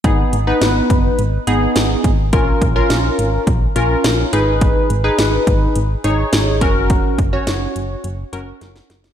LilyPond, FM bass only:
\new Staff \with { instrumentName = "FM bass" } { \clef bass \time 4/4 \key gis \dorian \tempo 4 = 105 gis,,8 gis,,8 gis,,8 fis,,8 gis,,8 gis,,8 gis,,8 gis,,8 | ais,,8 ais,,8 ais,,8 gis,,8 ais,,8 ais,,8 ais,,8 gis,,8~ | gis,,8 gis,,8 gis,,8 gis,,8 gis,,8 gis,,8 gis,,8 fis,,8~ | fis,,8 fis,,8 fis,,8 fis,,8 fis,,8 fis,,8 fis,,8 fis,,8 | }